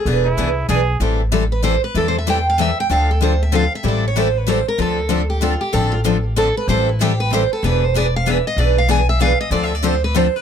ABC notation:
X:1
M:3/4
L:1/8
Q:"Swing" 1/4=190
K:Am
V:1 name="Steel-string acoustic guitar"
^G3 z3 | z3 B c B | (3A c e g f e g | f A c e f e |
d ^c =c B c _B | A3 G F G | A F z2 A B | c E G B c A |
B c d f e ^d | d f ^g e f ^d | (3d e d c B c B |]
V:2 name="Trumpet"
z E3 ^G2 | z6 | z6 | z6 |
z6 | z6 | z6 | z6 |
z6 | z6 | z6 |]
V:3 name="Steel-string acoustic guitar"
[E,B,D^G] z [E,B,DG] z [E,B,DG] z | [E,G,CEA] z [E,G,CEA] z [E,G,CEA] z | [E,G,CEA] z [E,G,CEA] z [E,G,CEA] z | [D,F,CDA] z [D,F,CDA] z [D,F,CDA] z |
[E,G,CEA] z [E,G,CEA] z [E,G,CEA] z | [D,F,CDA] z [D,F,CDA] z [D,F,CDA] z | [D,F,CDA] z [D,F,CDA] z [D,F,CDA] z | [E,G,CEA] z [E,G,CEA] z [E,G,CEA] z |
[E,B,D^G] z [E,B,DG] z [E,B,DG] z | [E,B,D^G] z [E,B,DG] z [E,B,DG] z | [D,F,CDA] z [D,F,CDA] z [D,F,CDA] z |]
V:4 name="Steel-string acoustic guitar"
[E,B,D^GB] z [E,B,DGB] z [E,B,DGB] z | [E,G,CEA] z [E,G,CEA] z [E,G,CEA] z | [E,G,CEA] z [E,G,CEA] z [E,G,CEA] z | [D,F,CDA] z [D,F,CDA] z [D,F,CDA] z |
[E,G,CEA] z [E,G,CEA] z [E,G,CEA] z | [D,F,CDA] z [D,F,CDA] z [D,F,CDA] z | [D,F,CDA] z [D,F,CDA] z [D,F,CDA] z | [E,G,CEA] z [E,G,CEA] z [E,G,CEA] z |
[E,B,D^GB] z [E,B,DGB] z [E,B,DGB] z | [E,B,D^GB] z [E,B,DGB] z [E,B,DGB] z | [D,F,CDA] z [D,F,CDA] z [D,F,CDA] z |]
V:5 name="Upright bass" clef=bass
E,,,2 C,,2 B,,,2 | A,,,6 | E,,6 | D,,6 |
A,,,6 | D,,6 | A,,,6 | A,,,6 |
E,,,6 | B,,,6 | D,,6 |]